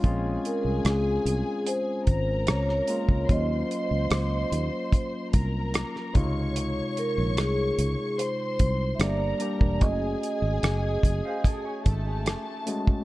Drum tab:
HH |x-x-x-x-x-x-x-x-|x-x-x-x-x-x-x-x-|x-x-x-x-x-x-x-x-|x-x-x-x-x-x-x-x-|
SD |----r-------rr--|----r-------rr--|----r-------r---|----r-------r---|
BD |o---------o----o|o-------o-o---o-|----------o----o|o-----o-o-o----o|